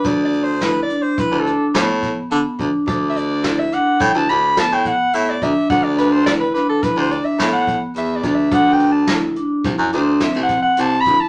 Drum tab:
HH |xxxxxxxxxx|xxxxxxxxxx|xxxxxxxxxx|xxxxxxxxxx|
SD |--o---oo--|--oo--o---|-oooo-o--o|--o-ooo---|
BD |o---o--o-o|o---o--o-o|o---o--o-o|o---o--o-o|